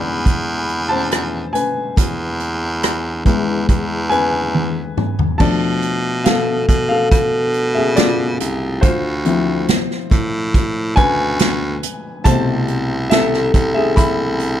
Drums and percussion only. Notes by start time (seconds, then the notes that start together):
0.26 kick, closed hi-hat
0.69 closed hi-hat
1.11 cross-stick, closed hi-hat
1.55 closed hi-hat
1.97 kick, closed hi-hat
2.40 closed hi-hat
2.83 cross-stick, closed hi-hat
3.26 kick, closed hi-hat
3.69 kick, closed hi-hat
4.11 closed hi-hat
4.55 high tom
4.97 mid tom
5.19 floor tom
5.40 kick, crash
5.82 closed hi-hat
6.26 snare, closed hi-hat
6.69 kick, closed hi-hat
7.12 kick, closed hi-hat
7.54 closed hi-hat
7.97 snare, closed hi-hat
8.40 closed hi-hat
8.83 kick, closed hi-hat
9.25 closed hi-hat
9.68 snare, closed hi-hat
9.91 snare
10.11 kick, closed hi-hat
10.54 kick, closed hi-hat
10.97 kick, closed hi-hat
11.39 snare, closed hi-hat
11.83 closed hi-hat
12.25 kick, closed hi-hat
12.68 closed hi-hat
13.11 snare, closed hi-hat
13.33 snare
13.54 kick, closed hi-hat
13.97 kick, closed hi-hat
14.39 closed hi-hat